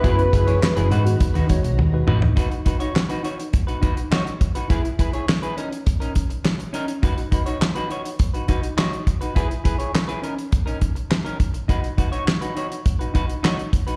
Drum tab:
HH |xxxx-xxxxxxx----|xxxx-xxxxxxx-xxx|xxxx-xxxxxxx-xxx|xxxx-xxxxxxx-xxx|
CP |----x-----------|----x-------x---|----x-------x---|----x-------x---|
SD |----o-----------|----o-------o---|----o-------o---|----o-------o---|
T1 |------------o---|----------------|----------------|----------------|
T2 |--------------o-|----------------|----------------|----------------|
FT |---------------o|----------------|----------------|----------------|
BD |o-o-----o-o-----|o-o-----o-o---o-|o-o-----o-o-----|o-o-----o-o---o-|

HH |xxxx-xxxxxxx-xxx|xxxx-xxxxxxx-xxx|
CP |----x-------x---|----x-------x---|
SD |----o-------o---|----o-------o---|
T1 |----------------|----------------|
T2 |----------------|----------------|
FT |----------------|----------------|
BD |o-o-----o-o---o-|o-o-----o-o---o-|